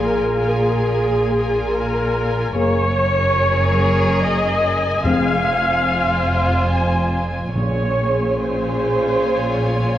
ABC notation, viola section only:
X:1
M:3/4
L:1/8
Q:1/4=72
K:Bbm
V:1 name="Viola section"
B A3 B2 | d4 e2 | f4 a z | d2 c4 |]